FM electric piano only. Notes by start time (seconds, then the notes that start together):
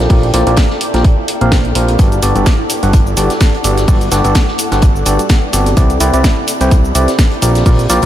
0.10 A#2 C4 F4 G4 A#4 D5
0.34 A#2 C4 F4 G4 A#4 D5
0.47 A#2 C4 F4 G4 A#4 D5
0.94 A#2 C4 F4 G4 A#4 G5
1.41 A#2 C4 F4 G4 A#4 F5
1.75 C4 F4 G4 A#4 F5
1.99 G2 B3 F#4 G4 A4 D5
2.23 G2 B3 F#4 G4 A4 D5
2.36 G2 B3 F#4 G4 A4 D5
2.83 G2 B3 F#4 G4 A4 F#5
3.17 G2 B3 F#4 G4 A4 D5
3.64 G2 B3 F#4 G4 A4 D5
3.88 G2 B3 F#4 G4 A4 D5
4.11 G2 B3 F#4 G4 A4 D5
4.25 G2 B3 F#4 G4 A4 D5
4.72 G2 B3 F#4 G4 A4 F#5
5.06 G2 B3 F#4 G4 A4 D5
5.53 C3 B3 F#4 G4 A4 D5
5.77 C3 C4 E4 G4 B4 D5
6.01 C3 C4 E4 G4 B4 D5
6.14 C3 C4 E4 G4 B4 D5
6.61 C3 C4 E4 G4 B4 G5
6.95 C3 C4 E4 G4 B4 D5
7.42 A#2 C4 F4 G4 A#4 D5
7.66 A#2 C4 F4 G4 A#4 D5
7.90 A#2 C4 F4 G4 A#4 D5